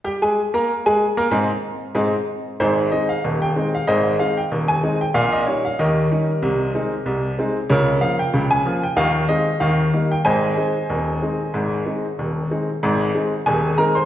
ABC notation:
X:1
M:2/4
L:1/16
Q:"Swing 16ths" 1/4=94
K:Ab
V:1 name="Grand piano"
[G,Gg] [A,Aa]2 [B,Bb]2 [A,Aa]2 [B,Bb] | [A,,CEA]2 z2 [A,,CEA]2 z2 | [EAc]2 e f2 g2 f | [Ace]2 f g2 a2 g |
f e d f [GBe]4- | [GBe]6 z2 | [FBd]2 f g2 a2 g | f2 e2 f3 g |
[cea]8- | [cea]4 z4 | z4 [Aa]2 [Bb] [cc'] |]
V:2 name="Grand piano" clef=bass
z8 | z8 | [A,,,A,,]2 [A,CE]2 [E,,,E,,]2 [A,CE]2 | [A,,,A,,]2 [A,CE]2 [E,,,E,,]2 [A,CE]2 |
[B,,,B,,]2 [G,DE]2 [E,,E,]2 [G,DE]2 | [C,,C,]2 [A,CE]2 [C,,C,]2 [A,CE]2 | [D,,D,]2 [F,B,F]2 [D,,D,]2 [F,B,F]2 | [E,,E,]2 [A,CE]2 [E,,E,]2 [G,B,E]2 |
[A,,,A,,]2 [A,CE]2 [E,,,E,,]2 [A,CE]2 | [A,,,A,,]2 [A,CE]2 [E,,,E,,]2 [A,CE]2 | [A,,,A,,]2 [A,CE]2 [E,,,E,,]2 [A,CE]2 |]